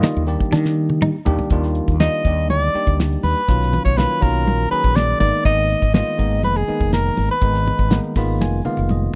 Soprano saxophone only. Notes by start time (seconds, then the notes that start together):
2.00 D#5
2.50 D5
3.24 B4
3.85 C#5
3.97 B4
4.22 A#4
4.71 B4
4.96 D5
5.20 D5
5.45 D#5
5.95 D#5
6.44 B4
6.57 G#4
6.93 A#4
7.31 B4